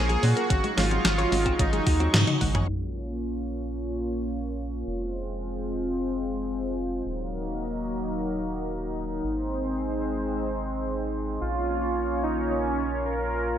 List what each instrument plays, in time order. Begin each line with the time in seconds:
Already playing: analog synth bass A#1, analog synth pad A#3 F4 G#4 C#6, supersaw synth G#4
0.09 clean electric guitar F3, synth arpeggio sound G#4, closed hi-hat
0.23 analog synth bass A#2, clean electric guitar A#2, synth arpeggio sound C#4, supersaw synth F#4, open hi-hat
0.36 clean electric guitar A#3, synth arpeggio sound A#4, closed hi-hat
0.50 analog synth bass G#1, analog synth pad F#3 G#3 D#4, synth arpeggio sound C#4, kick, closed hi-hat
0.64 clean electric guitar G#3, synth arpeggio sound F#4, closed hi-hat
0.77 analog synth bass G#1, clean electric guitar G#3, synth arpeggio sound C#4, supersaw synth F4, snare, open hi-hat
0.91 clean electric guitar C4, synth arpeggio sound G#4, closed hi-hat
1.05 analog synth bass G#1, clean electric guitar G#3, synth arpeggio sound C#4, snare, closed hi-hat
1.18 synth arpeggio sound C#5, closed hi-hat
1.32 analog synth bass G#1, clean electric guitar G#3, synth arpeggio sound C#4, open hi-hat
1.45 clean electric guitar C4, synth arpeggio sound F#4, kick, closed hi-hat
1.59 analog synth bass G#1, clean electric guitar G#3, synth arpeggio sound C#4, supersaw synth D#4, kick, closed hi-hat
1.73 clean electric guitar G#3, synth arpeggio sound G#4, closed hi-hat
1.86 analog synth bass D#2, synth arpeggio sound F#4, kick, open hi-hat
2.00 clean electric guitar C4, synth arpeggio sound F#4, closed hi-hat
2.14 analog synth bass G#2, clean electric guitar G#3, synth arpeggio sound D#4, snare, closed hi-hat, high tom
2.27 clean electric guitar D#4, synth arpeggio sound D#4, closed hi-hat, high tom
2.41 analog synth bass G#1, clean electric guitar G#3, synth arpeggio sound F#5, kick, open hi-hat
2.55 clean electric guitar G#4, synth arpeggio sound C#5, closed hi-hat, mid tom
2.68 analog synth bass A#1, analog synth pad A#3 C#4 F4 C#5
4.86 analog synth bass F1, analog synth pad G#3 C4 F4 C5
7.05 analog synth bass D#1, analog synth pad F#3 A#3 D#4 A#4
9.23 analog synth bass G#1, analog synth pad G#3 C4 C5
11.41 analog synth bass A#1, analog synth pad A#3 C#4 F4 C#5, supersaw synth F4
12.23 supersaw synth D#4
12.51 supersaw synth C#4
13.05 supersaw synth A#4